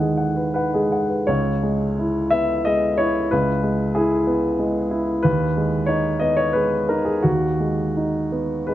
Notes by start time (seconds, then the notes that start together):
Already playing: D#2 D#3 B4 F#5
0.00 G#3 G#4
0.17 F#5
0.36 B4
0.54 B4 F#5
0.74 G#3 G#4
0.92 F#5
1.09 B4
1.27 C#2 C#5
1.63 G#3
1.99 E4
2.30 B3 E5
2.65 G#3 D#5
2.97 E4 C#5
3.31 C#2 B4
3.63 G#3
3.95 E4 G#4
4.27 B3
4.59 G#3
4.91 E4
5.23 D#2 B4
5.57 G#3
5.86 D#4 C#5
6.20 B3 D#5
6.37 C#5
6.53 G#3 B4
6.89 D#4 A#4
7.05 G#4
7.23 D#2 F#4
7.60 G#3
7.97 D#4
8.32 B3
8.67 G#3 B4